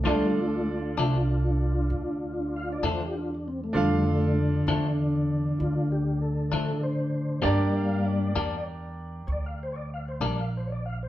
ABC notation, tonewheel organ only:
X:1
M:12/8
L:1/16
Q:3/8=65
K:Dm
V:1 name="Tonewheel organ"
G,2 A,2 z12 f d c G F D C A, | G,2 A,2 z8 [EF]2 G2 A4 c4 | d2 f2 d4 z4 [^cd] f =c [^cd] f =c d f c [^cd] f =c |]
V:2 name="Tonewheel organ"
[A,DF]24 | [D,A,D]24 | [G,B,D]6 z16 z2 |]